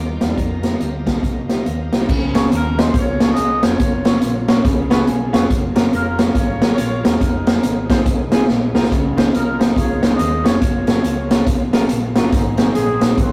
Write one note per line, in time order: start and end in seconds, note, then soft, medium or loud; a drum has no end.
0.00 0.17 D#2 medium
0.00 2.05 G3 medium
0.00 2.05 D#4 medium
0.00 2.04 F4 medium
0.00 2.06 G4 medium
0.00 2.06 D#5 soft
0.00 2.06 F5 soft
0.00 0.36 D6 medium
0.20 0.35 E2 medium
0.20 0.26 G3 medium
0.20 0.25 D#4 medium
0.20 0.26 F4 medium
0.20 0.26 F5 medium
0.20 snare medium
0.20 closed hi-hat medium
0.27 0.36 G3 medium
0.27 0.37 D#4 medium
0.27 0.37 F4 medium
0.27 0.37 D5 medium
0.37 0.74 F2 medium
0.37 2.07 A#3 medium
0.37 2.07 A#5 medium
0.37 kick medium
0.37 closed hi-hat medium
0.62 0.68 G3 medium
0.62 0.68 D#4 medium
0.62 0.68 F4 medium
0.62 0.68 A#4 medium
0.62 snare medium
0.62 closed hi-hat medium
0.71 0.83 G3 medium
0.71 0.83 D#4 medium
0.71 0.83 F4 medium
0.71 0.83 A#4 medium
0.80 1.17 D2 medium
0.80 closed hi-hat medium
1.06 1.16 G3 medium
1.06 1.16 D#4 medium
1.06 1.17 F4 medium
1.06 1.17 G4 medium
1.06 kick medium
1.06 snare loud
1.06 closed hi-hat medium
1.23 1.59 C2 medium
1.23 kick medium
1.23 closed hi-hat medium
1.49 1.60 G3 medium
1.49 1.60 D#4 medium
1.49 1.60 F4 medium
1.49 1.60 G4 medium
1.49 snare medium
1.49 closed hi-hat medium
1.66 1.88 D#2 medium
1.66 2.06 F5 medium
1.66 closed hi-hat medium
1.92 1.97 G3 medium
1.92 1.97 D#4 medium
1.92 1.98 F4 medium
1.92 1.98 A#4 medium
1.92 snare medium
1.92 closed hi-hat medium
2.00 2.09 G3 medium
2.00 2.09 D#4 medium
2.00 2.09 F4 medium
2.00 2.09 A#4 medium
2.09 2.45 C#2 loud
2.09 2.73 C#3 medium
2.09 3.78 F3 medium
2.09 3.78 A#3 medium
2.09 5.47 C#4 medium
2.09 3.78 G#4 medium
2.09 kick loud
2.09 crash loud
2.34 2.45 A#3 medium
2.34 2.45 C#4 medium
2.34 2.45 F4 medium
2.34 2.45 G#4 medium
2.34 2.45 C#5 loud
2.34 snare loud
2.34 closed hi-hat medium
2.52 2.88 D#2 medium
2.52 2.77 A#4 medium
2.52 closed hi-hat medium
2.78 2.88 A#3 medium
2.78 2.88 C#4 medium
2.78 2.88 F4 medium
2.78 2.88 G#4 medium
2.78 2.95 C5 medium
2.78 2.88 D#5 medium
2.78 snare loud
2.78 closed hi-hat medium
2.94 3.30 C#2 medium
2.94 3.64 F4 medium
2.94 3.30 A#4 medium
2.94 3.28 C#5 loud
2.94 kick loud
2.94 closed hi-hat medium
3.20 3.30 A#3 medium
3.20 3.30 C#4 medium
3.20 3.31 F4 medium
3.20 3.31 G#4 medium
3.20 3.31 C#5 loud
3.20 snare loud
3.20 closed hi-hat medium
3.31 3.77 G#4 medium
3.31 3.64 A#4 medium
3.31 3.64 D#5 loud
3.36 3.59 C2 medium
3.36 closed hi-hat medium
3.62 3.77 F1 loud
3.62 3.73 A#3 medium
3.62 3.73 C#4 medium
3.62 3.73 F4 medium
3.62 4.88 F4 medium
3.62 3.73 G#4 medium
3.62 4.88 A#4 medium
3.62 3.73 C5 medium
3.62 4.91 C#5 medium
3.62 snare loud
3.62 closed hi-hat medium
3.80 4.16 F#1 loud
3.80 4.64 F#3 medium
3.80 4.64 A#3 medium
3.80 5.48 F4 medium
3.80 kick loud
3.80 closed hi-hat loud
4.05 4.16 A#3 medium
4.05 4.16 C#4 medium
4.05 4.16 F4 medium
4.05 4.16 F#4 medium
4.05 4.16 C#5 medium
4.05 snare loud
4.05 closed hi-hat medium
4.22 4.59 A#1 medium
4.22 closed hi-hat medium
4.48 4.58 A#3 medium
4.48 4.58 C#4 medium
4.48 4.58 F4 medium
4.48 4.58 F#4 medium
4.48 4.59 C#5 medium
4.48 snare loud
4.48 closed hi-hat medium
4.65 5.01 C#2 medium
4.65 5.29 C#3 medium
4.65 5.50 B3 medium
4.65 5.48 G#4 medium
4.65 kick loud
4.65 closed hi-hat medium
4.90 5.01 B3 loud
4.90 5.01 C#4 medium
4.90 5.01 F4 medium
4.90 5.01 G#4 medium
4.90 5.01 C#5 loud
4.90 5.06 B5 medium
4.90 snare loud
4.90 closed hi-hat medium
5.07 5.30 B1 loud
5.07 5.31 G#5 medium
5.07 closed hi-hat medium
5.33 5.48 F1 medium
5.33 5.43 B3 medium
5.33 5.43 C#4 medium
5.33 5.44 F4 medium
5.33 5.43 G#4 medium
5.33 5.43 C#5 loud
5.33 5.49 F5 medium
5.33 snare loud
5.33 closed hi-hat medium
5.49 5.86 F#1 loud
5.49 7.18 F#3 medium
5.49 7.19 A#3 medium
5.49 7.19 F4 medium
5.49 8.88 G#4 medium
5.49 kick loud
5.49 closed hi-hat loud
5.75 5.86 G#3 medium
5.75 5.86 C#4 medium
5.75 5.86 F4 medium
5.75 5.86 F#4 medium
5.75 5.86 A#4 loud
5.75 snare loud
5.75 closed hi-hat medium
5.93 6.29 F1 loud
5.93 6.74 C#4 medium
5.93 6.37 F4 medium
5.93 6.33 A#4 loud
5.93 closed hi-hat medium
6.19 6.29 G#3 medium
6.19 6.29 C#4 medium
6.19 6.29 F4 medium
6.19 6.29 F#4 medium
6.19 6.29 A#4 medium
6.19 snare loud
6.19 closed hi-hat medium
6.35 6.72 G#1 medium
6.35 6.71 F4 medium
6.35 6.72 A#4 medium
6.35 6.71 C#5 loud
6.35 kick loud
6.35 closed hi-hat medium
6.62 6.72 G#3 medium
6.62 6.72 C#4 medium
6.62 6.72 F4 medium
6.62 6.72 F#4 medium
6.62 6.72 A#4 medium
6.62 snare loud
6.62 closed hi-hat medium
6.73 7.19 F4 medium
6.73 7.04 A#4 medium
6.73 7.03 C#5 loud
6.78 7.00 A#1 loud
6.78 closed hi-hat loud
7.04 7.18 E1 medium
7.04 7.14 G#3 medium
7.04 7.14 C#4 medium
7.04 8.28 D#4 medium
7.04 7.14 F4 medium
7.04 7.14 F#4 medium
7.04 7.15 A#4 medium
7.04 8.32 A#4 medium
7.04 snare loud
7.04 closed hi-hat medium
7.19 7.57 F1 loud
7.19 8.89 F3 medium
7.19 10.58 G#3 medium
7.19 8.89 D#4 medium
7.19 kick loud
7.19 closed hi-hat medium
7.47 7.57 G#3 medium
7.47 7.57 C4 medium
7.47 7.57 D#4 medium
7.47 7.57 F4 medium
7.47 7.57 C5 medium
7.47 snare loud
7.47 closed hi-hat medium
7.63 8.00 G#1 medium
7.63 closed hi-hat medium
7.90 8.00 G#3 medium
7.90 8.00 C4 medium
7.90 8.00 D#4 medium
7.90 8.00 F4 medium
7.90 8.00 C5 loud
7.90 kick loud
7.90 snare loud
7.90 closed hi-hat medium
8.06 8.42 C2 medium
8.06 kick loud
8.06 closed hi-hat medium
8.32 8.42 G#3 medium
8.32 8.42 C4 medium
8.32 8.42 D#4 medium
8.32 8.42 F4 medium
8.32 8.43 G#4 loud
8.32 snare loud
8.32 closed hi-hat medium
8.49 8.71 A#1 loud
8.49 snare medium
8.75 8.89 C2 loud
8.75 8.85 G#3 medium
8.75 8.85 C4 medium
8.75 8.85 D#4 medium
8.75 8.85 F4 medium
8.75 8.85 A#4 loud
8.75 snare loud
8.83 snare loud
8.92 9.28 C#2 loud
8.92 9.56 C#3 medium
8.92 10.61 D#3 medium
8.92 10.61 C#4 medium
8.92 12.30 F4 medium
8.92 kick loud
8.92 closed hi-hat medium
9.16 9.27 G#3 medium
9.16 9.27 C#4 medium
9.16 9.27 D#4 medium
9.16 9.27 F4 medium
9.16 9.28 C5 loud
9.16 snare loud
9.16 closed hi-hat medium
9.34 9.71 C2 medium
9.34 10.16 D#4 medium
9.34 9.75 F4 medium
9.34 9.75 A#4 medium
9.34 closed hi-hat medium
9.59 9.70 G#3 medium
9.59 9.70 C#4 medium
9.59 9.70 D#4 medium
9.59 9.70 F4 medium
9.59 9.70 C5 medium
9.59 snare loud
9.59 closed hi-hat medium
9.75 10.13 C#2 medium
9.75 10.44 F4 medium
9.75 10.11 G#4 medium
9.75 10.11 C#5 loud
9.75 kick loud
9.75 closed hi-hat medium
10.02 10.13 G#3 medium
10.02 10.13 C#4 medium
10.02 10.13 D#4 medium
10.02 10.13 F4 medium
10.02 10.13 C5 medium
10.02 snare loud
10.02 closed hi-hat medium
10.12 10.59 G#4 medium
10.12 10.59 C5 medium
10.12 10.46 D#5 loud
10.19 10.41 D#2 medium
10.19 closed hi-hat loud
10.44 10.60 F1 medium
10.44 10.55 G#3 medium
10.44 10.55 C#4 medium
10.44 10.55 D#4 medium
10.44 10.55 F4 medium
10.44 11.69 F4 medium
10.44 11.69 A#4 medium
10.44 10.55 C#5 loud
10.44 11.73 C#5 loud
10.44 snare loud
10.44 closed hi-hat medium
10.62 10.98 F#1 loud
10.62 13.32 F#3 medium
10.62 13.32 A#3 medium
10.62 12.31 G#4 medium
10.62 kick loud
10.62 closed hi-hat loud
10.87 10.98 G#3 medium
10.87 10.98 C#4 medium
10.87 10.98 F4 medium
10.87 10.98 F#4 medium
10.87 10.98 A#4 medium
10.87 snare loud
10.87 closed hi-hat medium
11.04 11.41 C#2 medium
11.04 closed hi-hat medium
11.30 11.41 G#3 medium
11.30 11.41 C#4 medium
11.30 11.41 F4 medium
11.30 11.41 F#4 medium
11.30 11.41 A#4 medium
11.30 snare loud
11.30 closed hi-hat medium
11.47 11.83 C2 medium
11.47 kick loud
11.47 closed hi-hat medium
11.73 11.84 G#3 loud
11.73 11.83 C#4 medium
11.73 11.84 F4 loud
11.73 11.84 F#4 medium
11.73 11.84 A#4 loud
11.73 snare loud
11.73 closed hi-hat medium
11.89 12.13 A#1 loud
11.89 closed hi-hat medium
12.16 12.31 G1 medium
12.16 12.26 G#3 medium
12.16 12.26 C#4 medium
12.16 12.27 F4 loud
12.16 12.27 F#4 medium
12.16 12.27 A#4 loud
12.16 snare loud
12.16 closed hi-hat medium
12.32 12.69 G#1 loud
12.32 12.98 G#2 medium
12.32 13.32 C4 medium
12.32 13.32 G#4 medium
12.32 kick loud
12.32 closed hi-hat medium
12.57 12.68 G#3 medium
12.57 12.69 C4 medium
12.57 12.69 D#4 medium
12.57 12.69 F#4 medium
12.57 12.69 A#4 medium
12.57 snare loud
12.57 closed hi-hat medium
12.75 13.12 A#1 medium
12.75 13.32 C4 medium
12.75 13.18 D#4 medium
12.75 13.15 G#4 loud
12.75 closed hi-hat medium
13.00 13.11 G#3 medium
13.00 13.11 C4 medium
13.00 13.11 D#4 medium
13.00 13.12 F#4 medium
13.00 13.12 A#4 medium
13.00 snare loud
13.00 closed hi-hat medium
13.18 13.32 G#1 medium
13.18 13.32 D#4 medium
13.18 13.32 F#4 medium
13.18 13.32 C5 loud
13.18 kick loud
13.18 closed hi-hat medium